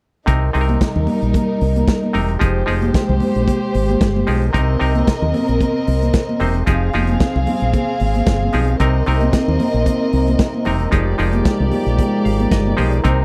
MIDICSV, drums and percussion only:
0, 0, Header, 1, 2, 480
1, 0, Start_track
1, 0, Tempo, 532387
1, 249, Time_signature, 4, 2, 24, 8
1, 11945, End_track
2, 0, Start_track
2, 0, Title_t, "Drums"
2, 248, Note_on_c, 9, 42, 59
2, 251, Note_on_c, 9, 36, 103
2, 338, Note_off_c, 9, 42, 0
2, 341, Note_off_c, 9, 36, 0
2, 490, Note_on_c, 9, 46, 51
2, 580, Note_off_c, 9, 46, 0
2, 622, Note_on_c, 9, 42, 36
2, 623, Note_on_c, 9, 63, 68
2, 712, Note_off_c, 9, 42, 0
2, 713, Note_off_c, 9, 63, 0
2, 730, Note_on_c, 9, 36, 100
2, 732, Note_on_c, 9, 42, 60
2, 733, Note_on_c, 9, 62, 35
2, 735, Note_on_c, 9, 38, 106
2, 820, Note_off_c, 9, 36, 0
2, 822, Note_off_c, 9, 42, 0
2, 824, Note_off_c, 9, 62, 0
2, 826, Note_off_c, 9, 38, 0
2, 863, Note_on_c, 9, 64, 65
2, 953, Note_off_c, 9, 64, 0
2, 964, Note_on_c, 9, 62, 31
2, 964, Note_on_c, 9, 63, 71
2, 964, Note_on_c, 9, 64, 63
2, 972, Note_on_c, 9, 46, 50
2, 1054, Note_off_c, 9, 62, 0
2, 1054, Note_off_c, 9, 63, 0
2, 1054, Note_off_c, 9, 64, 0
2, 1062, Note_off_c, 9, 46, 0
2, 1099, Note_on_c, 9, 42, 42
2, 1189, Note_off_c, 9, 42, 0
2, 1205, Note_on_c, 9, 62, 31
2, 1205, Note_on_c, 9, 63, 61
2, 1209, Note_on_c, 9, 36, 98
2, 1212, Note_on_c, 9, 42, 62
2, 1295, Note_off_c, 9, 62, 0
2, 1295, Note_off_c, 9, 63, 0
2, 1300, Note_off_c, 9, 36, 0
2, 1303, Note_off_c, 9, 42, 0
2, 1452, Note_on_c, 9, 46, 59
2, 1542, Note_off_c, 9, 46, 0
2, 1584, Note_on_c, 9, 42, 42
2, 1590, Note_on_c, 9, 63, 68
2, 1674, Note_off_c, 9, 42, 0
2, 1680, Note_off_c, 9, 63, 0
2, 1691, Note_on_c, 9, 36, 110
2, 1693, Note_on_c, 9, 42, 57
2, 1699, Note_on_c, 9, 38, 110
2, 1781, Note_off_c, 9, 36, 0
2, 1783, Note_off_c, 9, 42, 0
2, 1789, Note_off_c, 9, 38, 0
2, 1832, Note_on_c, 9, 63, 63
2, 1922, Note_off_c, 9, 63, 0
2, 1929, Note_on_c, 9, 46, 58
2, 1935, Note_on_c, 9, 62, 32
2, 1935, Note_on_c, 9, 64, 66
2, 2019, Note_off_c, 9, 46, 0
2, 2025, Note_off_c, 9, 62, 0
2, 2025, Note_off_c, 9, 64, 0
2, 2061, Note_on_c, 9, 42, 34
2, 2151, Note_off_c, 9, 42, 0
2, 2166, Note_on_c, 9, 62, 28
2, 2176, Note_on_c, 9, 36, 103
2, 2177, Note_on_c, 9, 42, 54
2, 2256, Note_off_c, 9, 62, 0
2, 2266, Note_off_c, 9, 36, 0
2, 2267, Note_off_c, 9, 42, 0
2, 2416, Note_on_c, 9, 46, 54
2, 2418, Note_on_c, 9, 62, 32
2, 2506, Note_off_c, 9, 46, 0
2, 2508, Note_off_c, 9, 62, 0
2, 2542, Note_on_c, 9, 42, 41
2, 2545, Note_on_c, 9, 63, 71
2, 2632, Note_off_c, 9, 42, 0
2, 2635, Note_off_c, 9, 63, 0
2, 2654, Note_on_c, 9, 36, 116
2, 2656, Note_on_c, 9, 42, 63
2, 2660, Note_on_c, 9, 38, 91
2, 2744, Note_off_c, 9, 36, 0
2, 2747, Note_off_c, 9, 42, 0
2, 2750, Note_off_c, 9, 38, 0
2, 2786, Note_on_c, 9, 64, 65
2, 2876, Note_off_c, 9, 64, 0
2, 2888, Note_on_c, 9, 63, 71
2, 2888, Note_on_c, 9, 64, 72
2, 2897, Note_on_c, 9, 46, 55
2, 2978, Note_off_c, 9, 63, 0
2, 2978, Note_off_c, 9, 64, 0
2, 2987, Note_off_c, 9, 46, 0
2, 3021, Note_on_c, 9, 42, 39
2, 3112, Note_off_c, 9, 42, 0
2, 3134, Note_on_c, 9, 36, 93
2, 3134, Note_on_c, 9, 62, 30
2, 3134, Note_on_c, 9, 63, 62
2, 3141, Note_on_c, 9, 42, 60
2, 3224, Note_off_c, 9, 36, 0
2, 3224, Note_off_c, 9, 62, 0
2, 3224, Note_off_c, 9, 63, 0
2, 3231, Note_off_c, 9, 42, 0
2, 3373, Note_on_c, 9, 62, 34
2, 3377, Note_on_c, 9, 46, 62
2, 3463, Note_off_c, 9, 62, 0
2, 3467, Note_off_c, 9, 46, 0
2, 3507, Note_on_c, 9, 42, 45
2, 3513, Note_on_c, 9, 63, 66
2, 3597, Note_off_c, 9, 42, 0
2, 3603, Note_off_c, 9, 63, 0
2, 3613, Note_on_c, 9, 36, 114
2, 3614, Note_on_c, 9, 42, 57
2, 3619, Note_on_c, 9, 38, 112
2, 3619, Note_on_c, 9, 62, 34
2, 3703, Note_off_c, 9, 36, 0
2, 3704, Note_off_c, 9, 42, 0
2, 3709, Note_off_c, 9, 38, 0
2, 3709, Note_off_c, 9, 62, 0
2, 3754, Note_on_c, 9, 63, 68
2, 3844, Note_off_c, 9, 63, 0
2, 3851, Note_on_c, 9, 46, 64
2, 3855, Note_on_c, 9, 62, 30
2, 3855, Note_on_c, 9, 64, 63
2, 3942, Note_off_c, 9, 46, 0
2, 3945, Note_off_c, 9, 62, 0
2, 3945, Note_off_c, 9, 64, 0
2, 3981, Note_on_c, 9, 42, 35
2, 4072, Note_off_c, 9, 42, 0
2, 4097, Note_on_c, 9, 36, 101
2, 4098, Note_on_c, 9, 42, 57
2, 4187, Note_off_c, 9, 36, 0
2, 4188, Note_off_c, 9, 42, 0
2, 4335, Note_on_c, 9, 46, 50
2, 4425, Note_off_c, 9, 46, 0
2, 4464, Note_on_c, 9, 42, 40
2, 4466, Note_on_c, 9, 63, 74
2, 4554, Note_off_c, 9, 42, 0
2, 4556, Note_off_c, 9, 63, 0
2, 4575, Note_on_c, 9, 36, 95
2, 4576, Note_on_c, 9, 42, 66
2, 4579, Note_on_c, 9, 38, 114
2, 4579, Note_on_c, 9, 62, 31
2, 4665, Note_off_c, 9, 36, 0
2, 4666, Note_off_c, 9, 42, 0
2, 4669, Note_off_c, 9, 38, 0
2, 4669, Note_off_c, 9, 62, 0
2, 4712, Note_on_c, 9, 64, 67
2, 4802, Note_off_c, 9, 64, 0
2, 4815, Note_on_c, 9, 46, 54
2, 4817, Note_on_c, 9, 62, 35
2, 4817, Note_on_c, 9, 63, 68
2, 4817, Note_on_c, 9, 64, 70
2, 4905, Note_off_c, 9, 46, 0
2, 4907, Note_off_c, 9, 62, 0
2, 4907, Note_off_c, 9, 63, 0
2, 4907, Note_off_c, 9, 64, 0
2, 4941, Note_on_c, 9, 42, 44
2, 5031, Note_off_c, 9, 42, 0
2, 5054, Note_on_c, 9, 36, 95
2, 5056, Note_on_c, 9, 62, 27
2, 5056, Note_on_c, 9, 63, 60
2, 5058, Note_on_c, 9, 42, 60
2, 5144, Note_off_c, 9, 36, 0
2, 5147, Note_off_c, 9, 62, 0
2, 5147, Note_off_c, 9, 63, 0
2, 5148, Note_off_c, 9, 42, 0
2, 5296, Note_on_c, 9, 46, 61
2, 5297, Note_on_c, 9, 62, 32
2, 5386, Note_off_c, 9, 46, 0
2, 5387, Note_off_c, 9, 62, 0
2, 5428, Note_on_c, 9, 42, 43
2, 5434, Note_on_c, 9, 63, 62
2, 5519, Note_off_c, 9, 42, 0
2, 5524, Note_off_c, 9, 63, 0
2, 5530, Note_on_c, 9, 42, 59
2, 5534, Note_on_c, 9, 36, 115
2, 5536, Note_on_c, 9, 38, 105
2, 5540, Note_on_c, 9, 62, 32
2, 5621, Note_off_c, 9, 42, 0
2, 5624, Note_off_c, 9, 36, 0
2, 5626, Note_off_c, 9, 38, 0
2, 5631, Note_off_c, 9, 62, 0
2, 5672, Note_on_c, 9, 63, 72
2, 5763, Note_off_c, 9, 63, 0
2, 5770, Note_on_c, 9, 46, 60
2, 5776, Note_on_c, 9, 64, 59
2, 5860, Note_off_c, 9, 46, 0
2, 5866, Note_off_c, 9, 64, 0
2, 5897, Note_on_c, 9, 42, 36
2, 5988, Note_off_c, 9, 42, 0
2, 6011, Note_on_c, 9, 62, 29
2, 6012, Note_on_c, 9, 42, 63
2, 6017, Note_on_c, 9, 36, 104
2, 6101, Note_off_c, 9, 62, 0
2, 6102, Note_off_c, 9, 42, 0
2, 6107, Note_off_c, 9, 36, 0
2, 6249, Note_on_c, 9, 46, 49
2, 6263, Note_on_c, 9, 63, 47
2, 6340, Note_off_c, 9, 46, 0
2, 6353, Note_off_c, 9, 63, 0
2, 6375, Note_on_c, 9, 42, 40
2, 6391, Note_on_c, 9, 63, 71
2, 6465, Note_off_c, 9, 42, 0
2, 6481, Note_off_c, 9, 63, 0
2, 6493, Note_on_c, 9, 42, 61
2, 6495, Note_on_c, 9, 36, 111
2, 6496, Note_on_c, 9, 38, 99
2, 6502, Note_on_c, 9, 62, 37
2, 6583, Note_off_c, 9, 42, 0
2, 6585, Note_off_c, 9, 36, 0
2, 6586, Note_off_c, 9, 38, 0
2, 6592, Note_off_c, 9, 62, 0
2, 6634, Note_on_c, 9, 64, 74
2, 6724, Note_off_c, 9, 64, 0
2, 6730, Note_on_c, 9, 46, 57
2, 6736, Note_on_c, 9, 62, 33
2, 6736, Note_on_c, 9, 63, 70
2, 6736, Note_on_c, 9, 64, 72
2, 6820, Note_off_c, 9, 46, 0
2, 6827, Note_off_c, 9, 62, 0
2, 6827, Note_off_c, 9, 63, 0
2, 6827, Note_off_c, 9, 64, 0
2, 6854, Note_on_c, 9, 42, 46
2, 6944, Note_off_c, 9, 42, 0
2, 6973, Note_on_c, 9, 42, 56
2, 6973, Note_on_c, 9, 62, 31
2, 6973, Note_on_c, 9, 63, 58
2, 6974, Note_on_c, 9, 36, 101
2, 7063, Note_off_c, 9, 42, 0
2, 7063, Note_off_c, 9, 62, 0
2, 7063, Note_off_c, 9, 63, 0
2, 7064, Note_off_c, 9, 36, 0
2, 7211, Note_on_c, 9, 62, 35
2, 7214, Note_on_c, 9, 46, 61
2, 7301, Note_off_c, 9, 62, 0
2, 7304, Note_off_c, 9, 46, 0
2, 7343, Note_on_c, 9, 42, 45
2, 7352, Note_on_c, 9, 63, 63
2, 7434, Note_off_c, 9, 42, 0
2, 7442, Note_off_c, 9, 63, 0
2, 7450, Note_on_c, 9, 42, 60
2, 7453, Note_on_c, 9, 36, 115
2, 7455, Note_on_c, 9, 38, 109
2, 7540, Note_off_c, 9, 42, 0
2, 7543, Note_off_c, 9, 36, 0
2, 7545, Note_off_c, 9, 38, 0
2, 7597, Note_on_c, 9, 63, 63
2, 7687, Note_off_c, 9, 63, 0
2, 7688, Note_on_c, 9, 46, 66
2, 7702, Note_on_c, 9, 62, 28
2, 7702, Note_on_c, 9, 64, 65
2, 7778, Note_off_c, 9, 46, 0
2, 7792, Note_off_c, 9, 62, 0
2, 7792, Note_off_c, 9, 64, 0
2, 7817, Note_on_c, 9, 42, 38
2, 7907, Note_off_c, 9, 42, 0
2, 7932, Note_on_c, 9, 42, 63
2, 7936, Note_on_c, 9, 36, 96
2, 8022, Note_off_c, 9, 42, 0
2, 8026, Note_off_c, 9, 36, 0
2, 8170, Note_on_c, 9, 46, 50
2, 8183, Note_on_c, 9, 62, 31
2, 8261, Note_off_c, 9, 46, 0
2, 8273, Note_off_c, 9, 62, 0
2, 8301, Note_on_c, 9, 42, 42
2, 8308, Note_on_c, 9, 63, 72
2, 8391, Note_off_c, 9, 42, 0
2, 8399, Note_off_c, 9, 63, 0
2, 8412, Note_on_c, 9, 42, 66
2, 8413, Note_on_c, 9, 36, 105
2, 8415, Note_on_c, 9, 38, 104
2, 8418, Note_on_c, 9, 62, 33
2, 8502, Note_off_c, 9, 42, 0
2, 8503, Note_off_c, 9, 36, 0
2, 8505, Note_off_c, 9, 38, 0
2, 8508, Note_off_c, 9, 62, 0
2, 8552, Note_on_c, 9, 64, 71
2, 8642, Note_off_c, 9, 64, 0
2, 8651, Note_on_c, 9, 46, 63
2, 8655, Note_on_c, 9, 62, 32
2, 8655, Note_on_c, 9, 63, 76
2, 8655, Note_on_c, 9, 64, 74
2, 8741, Note_off_c, 9, 46, 0
2, 8745, Note_off_c, 9, 62, 0
2, 8745, Note_off_c, 9, 63, 0
2, 8745, Note_off_c, 9, 64, 0
2, 8777, Note_on_c, 9, 42, 43
2, 8868, Note_off_c, 9, 42, 0
2, 8890, Note_on_c, 9, 36, 95
2, 8890, Note_on_c, 9, 62, 29
2, 8890, Note_on_c, 9, 63, 59
2, 8893, Note_on_c, 9, 42, 56
2, 8980, Note_off_c, 9, 62, 0
2, 8980, Note_off_c, 9, 63, 0
2, 8981, Note_off_c, 9, 36, 0
2, 8983, Note_off_c, 9, 42, 0
2, 9131, Note_on_c, 9, 46, 56
2, 9221, Note_off_c, 9, 46, 0
2, 9259, Note_on_c, 9, 42, 41
2, 9271, Note_on_c, 9, 63, 72
2, 9349, Note_off_c, 9, 42, 0
2, 9361, Note_off_c, 9, 63, 0
2, 9367, Note_on_c, 9, 42, 56
2, 9368, Note_on_c, 9, 36, 122
2, 9372, Note_on_c, 9, 38, 110
2, 9457, Note_off_c, 9, 42, 0
2, 9458, Note_off_c, 9, 36, 0
2, 9463, Note_off_c, 9, 38, 0
2, 9506, Note_on_c, 9, 63, 68
2, 9596, Note_off_c, 9, 63, 0
2, 9602, Note_on_c, 9, 46, 65
2, 9610, Note_on_c, 9, 64, 64
2, 9692, Note_off_c, 9, 46, 0
2, 9700, Note_off_c, 9, 64, 0
2, 9733, Note_on_c, 9, 42, 41
2, 9823, Note_off_c, 9, 42, 0
2, 9842, Note_on_c, 9, 62, 32
2, 9846, Note_on_c, 9, 42, 61
2, 9850, Note_on_c, 9, 36, 110
2, 9932, Note_off_c, 9, 62, 0
2, 9936, Note_off_c, 9, 42, 0
2, 9940, Note_off_c, 9, 36, 0
2, 10087, Note_on_c, 9, 46, 55
2, 10177, Note_off_c, 9, 46, 0
2, 10211, Note_on_c, 9, 42, 43
2, 10218, Note_on_c, 9, 63, 73
2, 10301, Note_off_c, 9, 42, 0
2, 10308, Note_off_c, 9, 63, 0
2, 10325, Note_on_c, 9, 42, 64
2, 10326, Note_on_c, 9, 36, 116
2, 10328, Note_on_c, 9, 38, 111
2, 10415, Note_off_c, 9, 42, 0
2, 10417, Note_off_c, 9, 36, 0
2, 10418, Note_off_c, 9, 38, 0
2, 10460, Note_on_c, 9, 64, 61
2, 10550, Note_off_c, 9, 64, 0
2, 10564, Note_on_c, 9, 63, 72
2, 10564, Note_on_c, 9, 64, 75
2, 10566, Note_on_c, 9, 46, 55
2, 10654, Note_off_c, 9, 63, 0
2, 10654, Note_off_c, 9, 64, 0
2, 10656, Note_off_c, 9, 46, 0
2, 10694, Note_on_c, 9, 42, 41
2, 10785, Note_off_c, 9, 42, 0
2, 10804, Note_on_c, 9, 63, 60
2, 10806, Note_on_c, 9, 36, 100
2, 10811, Note_on_c, 9, 42, 62
2, 10894, Note_off_c, 9, 63, 0
2, 10896, Note_off_c, 9, 36, 0
2, 10901, Note_off_c, 9, 42, 0
2, 11050, Note_on_c, 9, 46, 66
2, 11140, Note_off_c, 9, 46, 0
2, 11175, Note_on_c, 9, 42, 47
2, 11181, Note_on_c, 9, 63, 71
2, 11265, Note_off_c, 9, 42, 0
2, 11272, Note_off_c, 9, 63, 0
2, 11283, Note_on_c, 9, 36, 109
2, 11283, Note_on_c, 9, 42, 64
2, 11288, Note_on_c, 9, 38, 114
2, 11289, Note_on_c, 9, 62, 30
2, 11373, Note_off_c, 9, 36, 0
2, 11373, Note_off_c, 9, 42, 0
2, 11378, Note_off_c, 9, 38, 0
2, 11379, Note_off_c, 9, 62, 0
2, 11423, Note_on_c, 9, 63, 70
2, 11513, Note_off_c, 9, 63, 0
2, 11520, Note_on_c, 9, 46, 64
2, 11527, Note_on_c, 9, 62, 30
2, 11527, Note_on_c, 9, 64, 59
2, 11610, Note_off_c, 9, 46, 0
2, 11617, Note_off_c, 9, 62, 0
2, 11617, Note_off_c, 9, 64, 0
2, 11648, Note_on_c, 9, 42, 41
2, 11738, Note_off_c, 9, 42, 0
2, 11759, Note_on_c, 9, 62, 30
2, 11760, Note_on_c, 9, 42, 61
2, 11764, Note_on_c, 9, 36, 104
2, 11850, Note_off_c, 9, 42, 0
2, 11850, Note_off_c, 9, 62, 0
2, 11854, Note_off_c, 9, 36, 0
2, 11945, End_track
0, 0, End_of_file